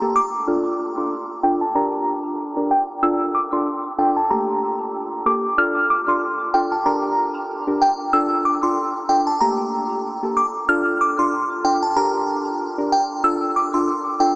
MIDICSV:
0, 0, Header, 1, 3, 480
1, 0, Start_track
1, 0, Key_signature, -1, "minor"
1, 0, Tempo, 638298
1, 357, Time_signature, 4, 2, 24, 8
1, 10795, End_track
2, 0, Start_track
2, 0, Title_t, "Synth bell"
2, 0, Program_c, 0, 98
2, 118, Note_on_c, 0, 86, 85
2, 203, Note_off_c, 0, 86, 0
2, 357, Note_on_c, 0, 89, 94
2, 442, Note_off_c, 0, 89, 0
2, 598, Note_on_c, 0, 86, 74
2, 682, Note_off_c, 0, 86, 0
2, 731, Note_on_c, 0, 84, 63
2, 797, Note_off_c, 0, 84, 0
2, 1078, Note_on_c, 0, 79, 77
2, 1162, Note_off_c, 0, 79, 0
2, 1212, Note_on_c, 0, 81, 68
2, 1278, Note_off_c, 0, 81, 0
2, 1319, Note_on_c, 0, 82, 87
2, 1670, Note_off_c, 0, 82, 0
2, 2037, Note_on_c, 0, 79, 77
2, 2122, Note_off_c, 0, 79, 0
2, 2277, Note_on_c, 0, 88, 99
2, 2362, Note_off_c, 0, 88, 0
2, 2516, Note_on_c, 0, 86, 75
2, 2601, Note_off_c, 0, 86, 0
2, 2653, Note_on_c, 0, 84, 74
2, 2719, Note_off_c, 0, 84, 0
2, 2997, Note_on_c, 0, 79, 71
2, 3082, Note_off_c, 0, 79, 0
2, 3132, Note_on_c, 0, 81, 71
2, 3199, Note_off_c, 0, 81, 0
2, 3238, Note_on_c, 0, 82, 81
2, 3589, Note_off_c, 0, 82, 0
2, 3958, Note_on_c, 0, 86, 83
2, 4042, Note_off_c, 0, 86, 0
2, 4198, Note_on_c, 0, 89, 99
2, 4283, Note_off_c, 0, 89, 0
2, 4439, Note_on_c, 0, 86, 75
2, 4523, Note_off_c, 0, 86, 0
2, 4574, Note_on_c, 0, 84, 68
2, 4640, Note_off_c, 0, 84, 0
2, 4917, Note_on_c, 0, 79, 80
2, 5002, Note_off_c, 0, 79, 0
2, 5052, Note_on_c, 0, 81, 69
2, 5118, Note_off_c, 0, 81, 0
2, 5158, Note_on_c, 0, 82, 84
2, 5509, Note_off_c, 0, 82, 0
2, 5877, Note_on_c, 0, 79, 79
2, 5962, Note_off_c, 0, 79, 0
2, 6115, Note_on_c, 0, 88, 107
2, 6201, Note_off_c, 0, 88, 0
2, 6356, Note_on_c, 0, 86, 73
2, 6441, Note_off_c, 0, 86, 0
2, 6488, Note_on_c, 0, 84, 76
2, 6556, Note_off_c, 0, 84, 0
2, 6836, Note_on_c, 0, 79, 72
2, 6921, Note_off_c, 0, 79, 0
2, 6969, Note_on_c, 0, 81, 74
2, 7037, Note_off_c, 0, 81, 0
2, 7073, Note_on_c, 0, 82, 81
2, 7427, Note_off_c, 0, 82, 0
2, 7796, Note_on_c, 0, 86, 76
2, 7881, Note_off_c, 0, 86, 0
2, 8037, Note_on_c, 0, 89, 105
2, 8122, Note_off_c, 0, 89, 0
2, 8278, Note_on_c, 0, 86, 77
2, 8363, Note_off_c, 0, 86, 0
2, 8414, Note_on_c, 0, 84, 68
2, 8480, Note_off_c, 0, 84, 0
2, 8758, Note_on_c, 0, 79, 80
2, 8843, Note_off_c, 0, 79, 0
2, 8893, Note_on_c, 0, 81, 73
2, 8959, Note_off_c, 0, 81, 0
2, 8998, Note_on_c, 0, 82, 89
2, 9349, Note_off_c, 0, 82, 0
2, 9718, Note_on_c, 0, 79, 79
2, 9803, Note_off_c, 0, 79, 0
2, 9957, Note_on_c, 0, 88, 107
2, 10042, Note_off_c, 0, 88, 0
2, 10198, Note_on_c, 0, 86, 78
2, 10283, Note_off_c, 0, 86, 0
2, 10332, Note_on_c, 0, 84, 76
2, 10398, Note_off_c, 0, 84, 0
2, 10679, Note_on_c, 0, 79, 76
2, 10763, Note_off_c, 0, 79, 0
2, 10795, End_track
3, 0, Start_track
3, 0, Title_t, "Synth stab"
3, 0, Program_c, 1, 62
3, 10, Note_on_c, 1, 58, 77
3, 12, Note_on_c, 1, 67, 72
3, 14, Note_on_c, 1, 69, 89
3, 131, Note_off_c, 1, 58, 0
3, 132, Note_off_c, 1, 67, 0
3, 133, Note_off_c, 1, 69, 0
3, 355, Note_on_c, 1, 62, 96
3, 357, Note_on_c, 1, 65, 86
3, 359, Note_on_c, 1, 69, 104
3, 698, Note_off_c, 1, 62, 0
3, 699, Note_off_c, 1, 65, 0
3, 700, Note_off_c, 1, 69, 0
3, 730, Note_on_c, 1, 62, 70
3, 732, Note_on_c, 1, 65, 68
3, 735, Note_on_c, 1, 69, 80
3, 851, Note_off_c, 1, 62, 0
3, 852, Note_off_c, 1, 65, 0
3, 854, Note_off_c, 1, 69, 0
3, 1076, Note_on_c, 1, 62, 76
3, 1079, Note_on_c, 1, 65, 70
3, 1081, Note_on_c, 1, 69, 82
3, 1223, Note_off_c, 1, 62, 0
3, 1224, Note_off_c, 1, 65, 0
3, 1225, Note_off_c, 1, 69, 0
3, 1316, Note_on_c, 1, 62, 97
3, 1317, Note_on_c, 1, 67, 83
3, 1321, Note_on_c, 1, 70, 102
3, 1877, Note_off_c, 1, 62, 0
3, 1878, Note_off_c, 1, 67, 0
3, 1879, Note_off_c, 1, 70, 0
3, 1928, Note_on_c, 1, 62, 74
3, 1930, Note_on_c, 1, 67, 65
3, 1933, Note_on_c, 1, 70, 86
3, 2050, Note_off_c, 1, 62, 0
3, 2051, Note_off_c, 1, 67, 0
3, 2053, Note_off_c, 1, 70, 0
3, 2275, Note_on_c, 1, 62, 96
3, 2277, Note_on_c, 1, 65, 91
3, 2279, Note_on_c, 1, 69, 101
3, 2618, Note_off_c, 1, 62, 0
3, 2619, Note_off_c, 1, 65, 0
3, 2620, Note_off_c, 1, 69, 0
3, 2649, Note_on_c, 1, 62, 76
3, 2652, Note_on_c, 1, 65, 70
3, 2653, Note_on_c, 1, 69, 83
3, 2771, Note_off_c, 1, 62, 0
3, 2772, Note_off_c, 1, 65, 0
3, 2773, Note_off_c, 1, 69, 0
3, 2995, Note_on_c, 1, 62, 74
3, 2996, Note_on_c, 1, 65, 67
3, 2999, Note_on_c, 1, 69, 81
3, 3142, Note_off_c, 1, 62, 0
3, 3143, Note_off_c, 1, 65, 0
3, 3144, Note_off_c, 1, 69, 0
3, 3236, Note_on_c, 1, 58, 95
3, 3237, Note_on_c, 1, 67, 86
3, 3240, Note_on_c, 1, 57, 106
3, 3906, Note_off_c, 1, 58, 0
3, 3906, Note_off_c, 1, 67, 0
3, 3908, Note_off_c, 1, 57, 0
3, 3952, Note_on_c, 1, 58, 75
3, 3955, Note_on_c, 1, 67, 72
3, 3957, Note_on_c, 1, 69, 81
3, 4101, Note_off_c, 1, 58, 0
3, 4102, Note_off_c, 1, 67, 0
3, 4103, Note_off_c, 1, 69, 0
3, 4193, Note_on_c, 1, 62, 97
3, 4195, Note_on_c, 1, 65, 90
3, 4197, Note_on_c, 1, 69, 105
3, 4537, Note_off_c, 1, 62, 0
3, 4538, Note_off_c, 1, 65, 0
3, 4539, Note_off_c, 1, 69, 0
3, 4567, Note_on_c, 1, 62, 77
3, 4571, Note_on_c, 1, 65, 69
3, 4572, Note_on_c, 1, 69, 83
3, 4690, Note_off_c, 1, 62, 0
3, 4692, Note_off_c, 1, 65, 0
3, 4692, Note_off_c, 1, 69, 0
3, 4915, Note_on_c, 1, 62, 73
3, 4916, Note_on_c, 1, 65, 65
3, 4920, Note_on_c, 1, 69, 84
3, 5062, Note_off_c, 1, 62, 0
3, 5063, Note_off_c, 1, 65, 0
3, 5064, Note_off_c, 1, 69, 0
3, 5153, Note_on_c, 1, 62, 94
3, 5155, Note_on_c, 1, 67, 89
3, 5157, Note_on_c, 1, 70, 101
3, 5716, Note_off_c, 1, 62, 0
3, 5717, Note_off_c, 1, 67, 0
3, 5718, Note_off_c, 1, 70, 0
3, 5769, Note_on_c, 1, 62, 77
3, 5771, Note_on_c, 1, 67, 69
3, 5772, Note_on_c, 1, 70, 82
3, 5890, Note_off_c, 1, 62, 0
3, 5892, Note_off_c, 1, 67, 0
3, 5892, Note_off_c, 1, 70, 0
3, 6114, Note_on_c, 1, 62, 96
3, 6116, Note_on_c, 1, 65, 86
3, 6118, Note_on_c, 1, 69, 106
3, 6458, Note_off_c, 1, 62, 0
3, 6459, Note_off_c, 1, 65, 0
3, 6460, Note_off_c, 1, 69, 0
3, 6488, Note_on_c, 1, 62, 78
3, 6490, Note_on_c, 1, 65, 70
3, 6493, Note_on_c, 1, 69, 86
3, 6610, Note_off_c, 1, 62, 0
3, 6611, Note_off_c, 1, 65, 0
3, 6612, Note_off_c, 1, 69, 0
3, 6834, Note_on_c, 1, 62, 75
3, 6837, Note_on_c, 1, 65, 68
3, 6839, Note_on_c, 1, 69, 81
3, 6982, Note_off_c, 1, 62, 0
3, 6983, Note_off_c, 1, 65, 0
3, 6984, Note_off_c, 1, 69, 0
3, 7077, Note_on_c, 1, 58, 95
3, 7079, Note_on_c, 1, 67, 88
3, 7081, Note_on_c, 1, 57, 106
3, 7637, Note_off_c, 1, 58, 0
3, 7638, Note_off_c, 1, 67, 0
3, 7639, Note_off_c, 1, 57, 0
3, 7690, Note_on_c, 1, 58, 73
3, 7693, Note_on_c, 1, 67, 68
3, 7694, Note_on_c, 1, 69, 83
3, 7811, Note_off_c, 1, 58, 0
3, 7813, Note_off_c, 1, 67, 0
3, 7813, Note_off_c, 1, 69, 0
3, 8037, Note_on_c, 1, 62, 100
3, 8039, Note_on_c, 1, 65, 90
3, 8041, Note_on_c, 1, 69, 105
3, 8379, Note_off_c, 1, 62, 0
3, 8380, Note_off_c, 1, 65, 0
3, 8381, Note_off_c, 1, 69, 0
3, 8409, Note_on_c, 1, 62, 74
3, 8411, Note_on_c, 1, 65, 68
3, 8414, Note_on_c, 1, 69, 87
3, 8531, Note_off_c, 1, 62, 0
3, 8532, Note_off_c, 1, 65, 0
3, 8533, Note_off_c, 1, 69, 0
3, 8755, Note_on_c, 1, 62, 74
3, 8756, Note_on_c, 1, 65, 70
3, 8759, Note_on_c, 1, 69, 82
3, 8902, Note_off_c, 1, 62, 0
3, 8903, Note_off_c, 1, 65, 0
3, 8904, Note_off_c, 1, 69, 0
3, 8993, Note_on_c, 1, 62, 97
3, 8996, Note_on_c, 1, 67, 90
3, 8998, Note_on_c, 1, 70, 104
3, 9556, Note_off_c, 1, 62, 0
3, 9557, Note_off_c, 1, 67, 0
3, 9558, Note_off_c, 1, 70, 0
3, 9610, Note_on_c, 1, 62, 78
3, 9613, Note_on_c, 1, 67, 74
3, 9614, Note_on_c, 1, 70, 84
3, 9731, Note_off_c, 1, 62, 0
3, 9732, Note_off_c, 1, 67, 0
3, 9733, Note_off_c, 1, 70, 0
3, 9954, Note_on_c, 1, 62, 98
3, 9956, Note_on_c, 1, 65, 90
3, 9959, Note_on_c, 1, 69, 110
3, 10298, Note_off_c, 1, 62, 0
3, 10299, Note_off_c, 1, 65, 0
3, 10300, Note_off_c, 1, 69, 0
3, 10329, Note_on_c, 1, 62, 75
3, 10331, Note_on_c, 1, 65, 71
3, 10334, Note_on_c, 1, 69, 84
3, 10451, Note_off_c, 1, 62, 0
3, 10452, Note_off_c, 1, 65, 0
3, 10453, Note_off_c, 1, 69, 0
3, 10675, Note_on_c, 1, 62, 77
3, 10678, Note_on_c, 1, 65, 69
3, 10681, Note_on_c, 1, 69, 84
3, 10795, Note_off_c, 1, 62, 0
3, 10795, Note_off_c, 1, 65, 0
3, 10795, Note_off_c, 1, 69, 0
3, 10795, End_track
0, 0, End_of_file